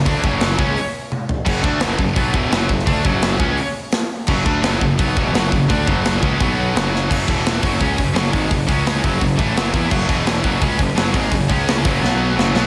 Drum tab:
CC |----------------|x---------------|----------------|x---------------|
HH |o---o---o-------|----o---o---o---|o---o---o---o---|----o---o---o---|
SD |----o-----------|----o-------o--o|----o-------o---|----o-------o---|
T1 |------------o---|----------------|----------------|----------------|
FT |--------------o-|----------------|----------------|----------------|
BD |o-o---o---------|o-o---o-o-o---o-|o-o---o---------|o-o---o-o-o---o-|

CC |----------------|x---------------|----------------|x---------------|
HH |o---o---o---o---|--o-o-o-o-o-o-o-|o-o-o-o-o-o-o-o-|--o-o-o-o-o-o-o-|
SD |----o-------o-o-|----o-------o---|----o-------o---|----o-------o---|
T1 |----------------|----------------|----------------|----------------|
FT |----------------|----------------|----------------|----------------|
BD |o-o---o-o-------|o-o---o-o-o---o-|o-o---o-o-o---o-|o-o---o-o-o---o-|

CC |----------------|
HH |o-o-o-o---------|
SD |----o---o---o-o-|
T1 |----------------|
FT |----------------|
BD |o-o---o---------|